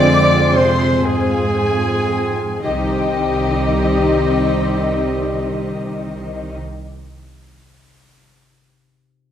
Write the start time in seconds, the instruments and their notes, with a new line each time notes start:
Already playing: double bass section F2, cello section D3, harp F3 C4 F4 G#4 F5 G#5 C6, french horn section G#3 C4, viola section C4 F4, violin section G#4 C5 D6, flute section D5, clarinet D5
0.05 harp C5
0.30 harp F5
0.54 cello section C3, flute section C5, clarinet C5, harp G#5, violin section C6
0.79 harp C6
1.04 cello section G#2, flute section G#4, clarinet G#4, violin section G#5, harp G#5
1.30 harp F5
1.56 harp C5
1.82 harp G#4
2.10 harp C4
2.36 harp F4
2.62 double bass section C2, harp C3, cello section D#3, french horn section G3 C4, viola section C4 D#4, violin section G4 D#5, clarinet G4, flute section D#5
2.70 harp C4
2.77 harp D#4
2.85 harp G4
2.91 harp C5
2.98 harp G5